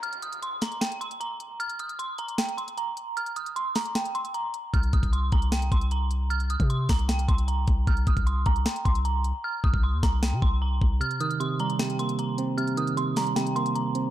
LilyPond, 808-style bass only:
\new Staff \with { instrumentName = "808-style bass" } { \clef bass \time 4/4 \key c \minor \tempo 4 = 153 r1 | r1 | r1 | c,8 c,4 c,4 c,4.~ |
c,8. c8. c,4 c,4 c,8 | c,8 c,4 c,8 r8 c,4~ c,16 r16 | r8 c,8. ees,16 c,8. c16 c,4 c,8 | r1 |
r1 | }